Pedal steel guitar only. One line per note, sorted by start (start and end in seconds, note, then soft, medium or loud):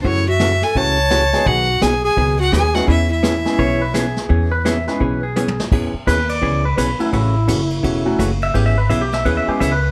3.59 3.81 C#5 loud
3.82 3.94 B4 medium
3.95 4.51 G#4 medium
4.52 4.65 B4 medium
4.66 4.87 E5 medium
4.88 5.22 B4 medium
5.23 5.64 G#4 medium
6.07 6.29 B4 medium
6.30 6.64 D5 loud
6.65 6.77 B4 medium
6.78 6.99 B4 medium
7.00 7.12 E4 medium
7.13 8.16 E4 medium
8.43 8.54 E5 medium
8.54 8.66 G4 medium
8.66 8.78 E5 medium
8.78 8.89 B4 medium
8.90 9.01 E5 medium
9.01 9.13 G4 loud
9.14 9.25 E5 medium
9.25 9.37 B4 medium
9.37 9.49 E5 medium
9.49 9.60 G4 medium
9.60 9.72 E5 medium
9.72 9.82 B4 medium
9.83 9.91 B4 medium